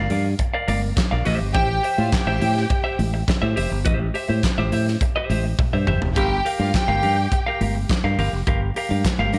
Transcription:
Already playing: clean electric guitar D5 F5
0.10 fingered electric bass G2, clean electric guitar A#4 D5 F5, open hi-hat, muted conga, low conga
0.25 muted clean electric guitar stroke
0.39 muted clean electric guitar stroke, kick, closed hi-hat, muted conga
0.54 clean electric guitar A#4 D5 F5
0.68 fingered electric bass G1, clean electric guitar A#4 D5 F5, open hi-hat, high conga
0.82 muted clean electric guitar stroke
0.96 muted clean electric guitar stroke, kick, snare, clap, closed hi-hat, muted conga
1.11 fingered electric bass A#1, clean electric guitar A#4 D5 F5
1.25 fingered electric bass A1, clean electric guitar G4 C5 E5, open hi-hat, muted conga, low conga
1.40 fingered electric bass G1, muted clean electric guitar stroke
1.54 fingered electric bass A1, clean electric guitar G4 C5 E5, violin section G4 G5, kick, closed hi-hat, muted conga, low conga
1.69 muted clean electric guitar stroke
1.83 clean electric guitar G4 C5 E5, open hi-hat
1.98 fingered electric bass A2, violin section F4 F5, clean electric guitar G4 C5 E5, high conga
2.12 violin section G4 G5, muted clean electric guitar stroke, kick, snare, clap, closed hi-hat
2.27 fingered electric bass A1, clean electric guitar G4 C5 E5, high conga
2.40 fingered electric bass A2, clean electric guitar G4 C5 E5, open hi-hat, low conga
2.55 muted clean electric guitar stroke, snare
2.70 muted clean electric guitar stroke, kick, closed hi-hat, muted conga
2.84 clean electric guitar G4 C5 E5
2.99 fingered electric bass A1, muted clean electric guitar stroke, open hi-hat, muted conga, high conga
3.14 muted clean electric guitar stroke
3.28 muted clean electric guitar stroke, kick, snare, clap, closed hi-hat, muted conga
3.42 fingered electric bass A2, clean electric guitar G4 C5 E5
3.56 fingered electric bass F1, clean electric guitar G4 C5 E5, open hi-hat, muted conga, low conga
3.71 fingered electric bass G1, muted clean electric guitar stroke
3.85 fingered electric bass A1, clean electric guitar G4 C5 E5, kick, closed hi-hat, muted conga, low conga
4.00 muted clean electric guitar stroke, high conga
4.14 clean electric guitar G4 C5 E5, open hi-hat, muted conga
4.29 fingered electric bass A2, clean electric guitar G4 C5 E5, high conga
4.43 muted clean electric guitar stroke, kick, snare, clap, closed hi-hat
4.58 fingered electric bass A1, clean electric guitar G4 C5 E5, high conga
4.72 fingered electric bass A2, clean electric guitar G4 C5 E5, open hi-hat, muted conga, low conga
4.87 muted clean electric guitar stroke, snare
5.01 muted clean electric guitar stroke, kick, closed hi-hat, muted conga
5.16 clean electric guitar G4 C5 E5
5.30 fingered electric bass A1, clean electric guitar G4 C5 E5, open hi-hat, muted conga, high conga
5.45 muted clean electric guitar stroke
5.59 muted clean electric guitar stroke, kick, high tom, muted conga
5.73 fingered electric bass G2, clean electric guitar G4 C5 E5
5.87 fingered electric bass G1, clean electric guitar G4 C5 E5, mid tom, low conga
6.01 fingered electric bass F1, muted clean electric guitar stroke, floor tom
6.16 fingered electric bass G1, violin section G4 G5, clean electric guitar G4 A#4 F5, kick, closed hi-hat, muted conga, low conga
6.31 muted clean electric guitar stroke
6.45 clean electric guitar G4 A#4 F5, open hi-hat
6.59 fingered electric bass G2, violin section F4 F5, clean electric guitar G4 A#4 F5, high conga
6.74 violin section G4 G5, muted clean electric guitar stroke, kick, snare, clap, closed hi-hat
6.88 fingered electric bass G1, clean electric guitar G4 A#4 F5, high conga
7.02 fingered electric bass G2, clean electric guitar G4 A#4 F5, open hi-hat, muted conga, low conga
7.17 muted clean electric guitar stroke
7.32 muted clean electric guitar stroke, kick, closed hi-hat, muted conga
7.47 clean electric guitar G4 A#4 F5
7.61 fingered electric bass G1, clean electric guitar G4 A#4 F5, open hi-hat, high conga
7.75 muted clean electric guitar stroke
7.89 muted clean electric guitar stroke, kick, snare, clap, closed hi-hat, muted conga
8.04 fingered electric bass G2, clean electric guitar G4 A#4 F5
8.19 fingered electric bass G1, clean electric guitar G4 A#4 F5, open hi-hat, muted conga, low conga
8.33 fingered electric bass F1, muted clean electric guitar stroke
8.47 fingered electric bass G1, clean electric guitar G4 A#4 F5, kick, closed hi-hat, low conga
8.61 muted clean electric guitar stroke
8.74 clean electric guitar G4 A#4 F5, open hi-hat, muted conga
8.89 fingered electric bass G2, clean electric guitar G4 A#4 F5, high conga
9.05 muted clean electric guitar stroke, kick, snare, clap, closed hi-hat
9.19 fingered electric bass G1, clean electric guitar G4 A#4 F5, high conga
9.33 fingered electric bass G2, clean electric guitar G4 A#4 F5, open hi-hat, muted conga, low conga

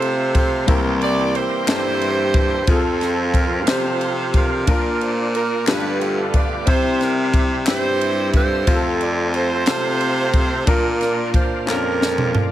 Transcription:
Already playing: baritone saxophone C3, tonewheel organ A3 C4 F4, grand piano C4 F4 A4, saxophone section F4 A4 C5
0.02 ride
0.35 saxophone section C5, kick, ride
0.66 baritone saxophone C2, grand piano C3 G3 A#3 C4 E4 A#4, tonewheel organ E3 G3 A#3 C4 G4, kick, ride
1.02 saxophone section D5, ride
1.35 saxophone section E4 G4 C5, ride
1.67 baritone saxophone G2, grand piano G3 A#3 C4 E4 A4, snare, clap, ride
2.02 ride
2.34 kick, ride
2.67 baritone saxophone F2, tonewheel organ F3 C4 F4, grand piano C4 F4 G#4, saxophone section C4 F4 A4, kick, ride
2.76 grand piano A4
3.01 snare, ride
3.34 saxophone section A#4, kick, ride
3.67 baritone saxophone C3, grand piano C4 F4 G4, saxophone section F4 A4 C5, snare, clap, ride
4.01 ride
4.34 saxophone section D4 F4 A#4, kick, ride
4.67 baritone saxophone A#2, grand piano A#2 D4 F4 A#4, tonewheel organ A#3 D4 F4, kick, ride
5.01 saxophone section C5, ride
5.35 saxophone section A#4, ride
5.67 baritone saxophone G2, grand piano G2 A3 D4 F4 G4 B4, tonewheel organ D3 G3 A3 B3 F4, saxophone section D4 F4 B4, snare, clap, ride
6.01 saxophone section A4, ride
6.34 saxophone section D5, kick, ride
6.66 grand piano C3 C4 E4 G4, baritone saxophone C3, tonewheel organ G3 C4 E5, saxophone section C5, kick, ride
6.70 saxophone section E4 G4
7.01 saxophone section A#4, snare, ride
7.34 kick, ride
7.66 baritone saxophone G2, grand piano C4 E4 G4, saxophone section E4 G4 C5, snare, clap, ride
8.01 ride
8.34 saxophone section F4 A4 C5, kick, ride
8.66 baritone saxophone F2, tonewheel organ A3 C4 F4, grand piano C4 F4 G4, kick, ride
8.75 grand piano A4
9.01 saxophone section D5, ride
9.34 saxophone section F4 A4 C5, ride
9.66 baritone saxophone C3, grand piano C4 F4 A4, snare, clap, ride
10.01 ride
10.33 kick, ride
10.66 baritone saxophone A#2, grand piano A#2 D4 F4 A#4, tonewheel organ A#3 C4 F4, saxophone section D4 F4 A#4, kick, ride
10.74 tonewheel organ D4
11.01 snare, ride
11.34 saxophone section C5, kick, ride
11.66 baritone saxophone F2, grand piano C#4 F4 A#4, snare, clap
11.70 saxophone section D4 F4 A#4, grand piano D4
12.02 snare
12.18 mid tom
12.35 floor tom

